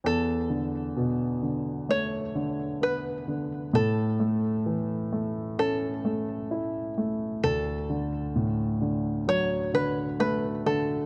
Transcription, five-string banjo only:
\new Staff \with { instrumentName = "Five-string banjo" } { \time 4/4 \key e \mixolydian \tempo 4 = 65 a'2 cis''4 b'4 | a'2 a'4. r8 | a'2 cis''8 b'8 b'8 a'8 | }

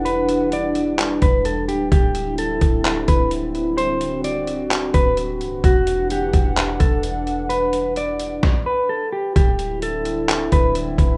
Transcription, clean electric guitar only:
\new Staff \with { instrumentName = "Clean electric guitar" } { \time 4/4 \key d \mixolydian \tempo 4 = 129 b'4 d''4. b'8 a'8 g'8 | g'4 a'4. b'8 r4 | c''4 d''4. b'8 r4 | fis'4 g'4. a'8 r4 |
b'4 d''4. b'8 a'8 g'8 | g'4 a'4. b'8 r4 | }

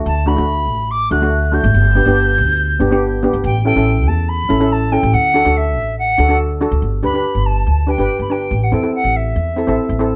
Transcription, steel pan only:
\new Staff \with { instrumentName = "Steel pan" } { \time 4/4 \key g \major \tempo 4 = 142 r8 <a d' fis'>16 <a d' fis'>4 r8. <a d' fis'>16 <a d' fis'>8 r16 <a d' fis'>8 | r8 <b d' g'>16 <b d' g'>4 r8. <b d' g'>16 <b d' g'>8 r16 <b d' g'>8 | r8 <cis' e' a'>16 <cis' e' a'>4 r8. <cis' e' a'>16 <cis' e' a'>8 r16 <cis' e' a'>8 | r8 <d' fis' a'>16 <d' fis' a'>4 r8. <d' fis' a'>16 <d' fis' a'>8 r16 <d' fis' a'>8 |
r8 <d' g' b'>16 <d' g' b'>4 r8. <d' g' b'>16 <d' g' b'>8 r16 <d' g' b'>8 | r8 <c' e' a'>16 <c' e' a'>4 r8. <c' e' a'>16 <c' e' a'>8 r16 <c' e' a'>8 | }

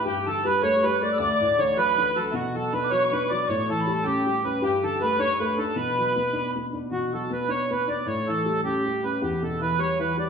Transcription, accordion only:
\new Staff \with { instrumentName = "Accordion" } { \time 6/8 \key b \minor \tempo 4. = 105 g'8 a'8 b'8 cis''8 b'8 d''8 | d''4 cis''8 b'4 a'8 | fis'8 a'8 b'8 cis''8 b'8 d''8 | cis''8 a'4 g'4 b'8 |
g'8 a'8 b'8 cis''8 b'8 a'8 | b'2 r4 | fis'8 a'8 b'8 cis''8 b'8 d''8 | cis''8 a'4 g'4 b'8 |
g'8 a'8 b'8 cis''8 b'8 d''8 | }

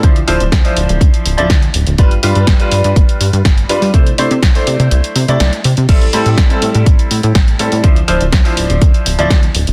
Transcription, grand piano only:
\new Staff \with { instrumentName = "Grand piano" } { \time 4/4 \key d \dorian \tempo 4 = 123 <f d' e' c''>16 r16 <f d' e' c''>16 r8 <f d' e' c''>4. <f d' e' d''>8 r8. | <g d' f' b'>16 r16 <g d' f' b'>8. <g d' f' b'>2~ <g d' f' b'>16 <g d' f' b'>8 | <a d' e' c''>16 r16 <a d' e' c''>16 r8 <a d' e' c''>4. <a d' e' d''>8 r8. | <g c' e' a'>16 r16 <g c' e' a'>8. <g c' e' a'>2~ <g c' e' a'>16 <g c' e' a'>8 |
<f d' e' c''>16 r16 <f d' e' c''>16 r8 <f d' e' c''>4. <f d' e' d''>8 r8. | }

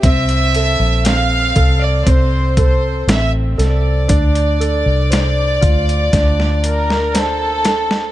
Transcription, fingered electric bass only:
\new Staff \with { instrumentName = "Fingered electric bass" } { \clef bass \time 4/4 \key d \minor \tempo 4 = 59 c,8. bes,,8. c,8 c,4 a,,8 c,8 | d,8. c,8. d,8 d,2 | }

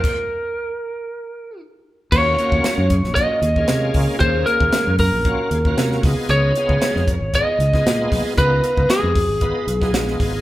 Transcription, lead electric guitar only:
\new Staff \with { instrumentName = "Lead electric guitar" } { \time 4/4 \key bes \major \tempo 4 = 115 bes'2. r4 | \key ees \minor des''2 ees''2 | c''8 bes'4 bes'2 r8 | des''2 ees''2 |
ces''4 aes'2 r4 | }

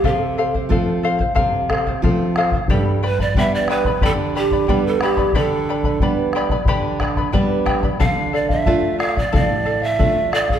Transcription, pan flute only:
\new Staff \with { instrumentName = "Pan flute" } { \time 4/4 \key g \mixolydian \tempo 4 = 90 a'4 r2. | a'8 b'16 d''16 e''16 d''16 b'8 a'8 g'8. a'16 g'8 | a'4 r2. | f''8 d''16 e''8. f''16 d''16 d''8. e''8. d''16 a'16 | }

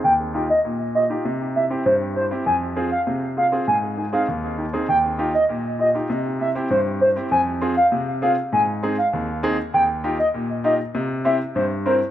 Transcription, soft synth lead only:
\new Staff \with { instrumentName = "Soft synth lead" } { \time 4/4 \key f \minor \tempo 4 = 99 g''16 r8 ees''16 r8 ees''16 r8. e''16 r16 c''16 r16 c''16 r16 | aes''16 r8 f''16 r8 f''16 r16 aes''16 r8 f''16 r4 | g''16 r8 ees''16 r8 ees''16 r8. e''16 r16 c''16 r16 c''16 r16 | aes''16 r8 f''16 r8 f''16 r16 aes''16 r8 f''16 r4 |
g''16 r8 ees''16 r8 ees''16 r8. e''16 r16 c''16 r16 c''16 r16 | }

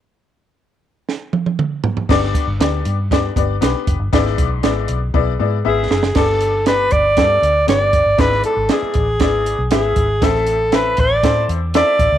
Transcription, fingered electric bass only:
\new Staff \with { instrumentName = "Fingered electric bass" } { \clef bass \time 4/4 \key g \major \tempo 4 = 118 r1 | g,,8 r16 g,,16 d,8 g,4 g,,8 b,,16 r16 fis,,16 g,,16 | gis,,8 b,,8 gis,,8 b,,8 b,,8 gis,8 gis,,8 fis,,8 | g,,4. g,,8 g,8 d,8 g,,8. g,,16 |
gis,,8 r16 gis,,16 r8 a,,8 gis,,8. b,,16 gis,,8 gis,,8 | a,,4. a,,8 a,8 e,8. r16 a,,16 cis,16 | }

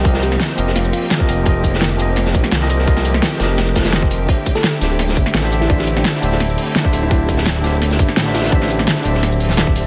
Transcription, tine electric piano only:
\new Staff \with { instrumentName = "Tine electric piano" } { \time 4/4 \key d \minor \tempo 4 = 170 <f c' g' bes' ees''>4. <f c' g' bes' ees''>4.~ <f c' g' bes' ees''>16 <f c' g' bes' ees''>16 <f c' g' bes' ees''>8 | <f c' g' bes' ees''>4. <f c' g' bes' ees''>4.~ <f c' g' bes' ees''>16 <f c' g' bes' ees''>16 <f c' g' bes' ees''>8 | <f c' g' bes' ees''>4. <f c' g' bes' ees''>4. <f c' g' bes' ees''>4 | <d d' g' c'' e''>4. <d d' g' c'' e''>4.~ <d d' g' c'' e''>16 <d d' g' c'' e''>16 <d d' g' c'' e''>8 |
<d d' g' c'' e''>4. <d d' g' c'' e''>4.~ <d d' g' c'' e''>16 <d d' g' c'' e''>16 <d d' g' c'' e''>8 | <d d' g' c'' e''>4. <d d' g' c'' e''>4.~ <d d' g' c'' e''>16 <d d' g' c'' e''>16 <d d' g' c'' e''>8 | <d d' g' c'' e''>4. <d d' g' c'' e''>4. <d d' g' c'' e''>4 | }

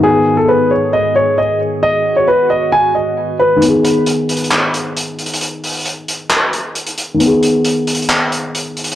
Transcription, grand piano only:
\new Staff \with { instrumentName = "Grand piano" } { \time 4/4 \key gis \minor \tempo 4 = 134 gis'8. a'16 b'8 cis''8 dis''8 cis''8 dis''8 r8 | dis''8. cis''16 b'8 dis''8 gis''8 dis''4 b'8 | r1 | r1 |
r1 | }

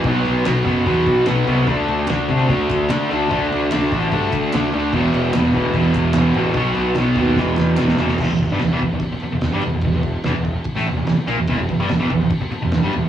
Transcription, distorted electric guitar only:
\new Staff \with { instrumentName = "Distorted electric guitar" } { \clef bass \time 4/4 \key e \minor \tempo 4 = 147 <b, fis b>4 <b, fis b>8 <b, fis b>8 <b, fis b>4 <b, fis b>8 <b, fis b>8 | <d a d'>4 <d a d'>8 <d a d'>8 <d a d'>4 <d a d'>8 <d a d'>8 | <d a d'>4 <d a d'>8 <d a d'>8 <d a d'>4 <d a d'>8 <d a d'>8 | <e, b, e>4 <e, b, e>8 <e, b, e>8 <e, b, e>4 <e, b, e>8 <e, b, e>8 |
<b, fis b>4 <b, fis b>8 <b, fis b>8 <e, b, e>4 <e, b, e>8 <e, b, e>8 | <e, e>16 e,16 e,16 <g, g>16 e,16 <e, e>16 e,16 e,16 r8. e,16 e,16 <g, g>16 e,16 e,16 | e,16 e,8 r16 <e, e>16 e,8 r8 <a, a>16 e,16 e,16 e,16 r16 <ais, ais>16 e,16 | <e, e>16 e,16 e,16 <g, g>16 e,16 <e, e>16 e,16 e,16 r8. e,16 e,16 <g, g>16 e,16 e,16 | }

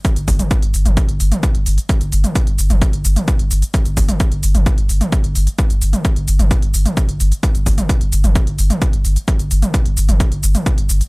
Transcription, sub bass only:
\new Staff \with { instrumentName = "Sub bass" } { \clef bass \time 4/4 \tempo 4 = 130 r16 g,,16 g,,16 r8 g,,16 g,,16 g,,16 r16 g,,16 g,,16 r8 g,,16 g,,16 r16 | r16 g,,16 g,,16 r8 g,,16 g,,16 g,,16 r16 g,,16 g,,16 r8 g,,16 g,,16 r16 | r16 g,,16 g,,16 r8 g,,16 g,,16 g,,16 r16 g,,16 g,,16 r8 g,,16 g,,16 r16 | r16 g,,16 g,,16 r8 g,,16 g,,16 g,,16 r16 g,,16 g,,16 r8 g,,16 g,,16 r16 |
r16 g,,16 g,,16 r8 g,,16 g,,16 g,,16 r16 g,,16 g,,16 r8 g,,16 g,,16 r16 | r16 g,,16 g,,16 r8 g,,16 g,,16 g,,16 r16 g,,16 g,,16 r8 g,,16 g,,16 r16 | }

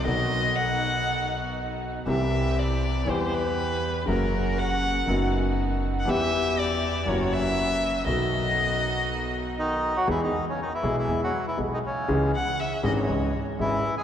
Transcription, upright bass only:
\new Staff \with { instrumentName = "Upright bass" } { \clef bass \time 4/4 \key b \phrygian \tempo 4 = 120 b,,1 | c,2 e,2 | fis,,2 fis,,2 | e,2 fis,,2 |
b,,1 | \key e \major e,8 r4 b,,8 e,8 r8 b,,8 r8 | cis,8 r4 gis,,8 cis,8 r8 gis,,8 r8 | }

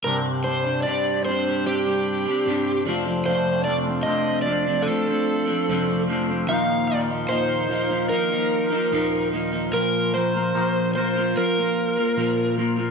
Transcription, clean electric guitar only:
\new Staff \with { instrumentName = "Clean electric guitar" } { \time 4/4 \key c \dorian \tempo 4 = 74 <c, g, c g d'>8 <g, c g d'>16 <c g d'>16 <c, g, c g d'>8 <g, c g d'>16 <c g d'>16 <g, c g d'>16 <c g d'>8 <c g d'>16 <c, g, c g d'>8 <f, c f a c' d'>16 <f a c' d'>16 | <f, c f a c' d'>8 <f a c' d'>16 <f a c' d'>16 <f, c f a c' d'>8 <f a c' d'>16 <f a c' d'>16 <f a c' d'>16 <f a c' d'>8 <f a c' d'>16 <f, c f a c' d'>8 <f a c' d'>16 <f a c' d'>16 | <ees, bes, ees f bes ees'>8 <ees f bes ees'>16 <ees f bes ees'>16 <ees, bes, ees f bes ees'>8 <ees f bes ees'>16 <ees f bes ees'>16 <ees f bes ees'>16 <ees f bes ees'>8 <ees f bes ees'>16 <ees, bes, ees f bes ees'>8 <ees f bes ees'>16 <ees f bes ees'>16 | <bes, f bes f' bes'>8 <f bes f' bes'>16 <bes f' bes'>16 <bes, f bes f' bes'>8 <f bes f' bes'>16 <bes f' bes'>16 <f bes f' bes'>16 <bes f' bes'>8 <bes f' bes'>16 <bes, f bes f' bes'>8 <f bes f' bes'>16 <bes f' bes'>16 | }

